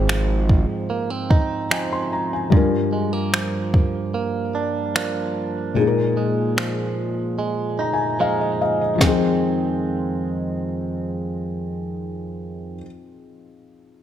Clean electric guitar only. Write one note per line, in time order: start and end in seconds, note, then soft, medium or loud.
0.00 2.52 G#2 medium
0.00 0.89 C4 medium
0.00 0.12 D#4 medium
0.00 0.93 G#4 medium
0.09 1.71 F3 medium
0.90 1.10 A#3 medium
1.10 1.70 C4 medium
1.30 1.71 D#4 medium
1.71 3.33 F3 medium
1.71 2.60 C4 medium
1.71 2.61 D#4 medium
2.52 5.76 G2 medium
2.93 3.13 G#3 medium
3.13 4.13 A#3 soft
3.33 4.95 F3 medium
4.14 4.96 A#3 medium
4.55 4.95 D4 medium
4.95 6.57 F3 medium
4.95 6.17 A#3 medium
4.95 5.85 D4 medium
5.76 9.01 A#2 medium
6.17 7.38 G#3 medium
6.57 8.19 F3 medium
7.39 8.20 G#3 medium
7.79 8.20 D#4 medium
8.20 9.01 F3 medium
8.20 9.03 G#3 medium
8.20 9.05 D#4 medium
8.99 12.81 F2 medium
8.99 12.84 D#3 medium
9.04 12.86 G#3 medium
9.04 12.88 C4 medium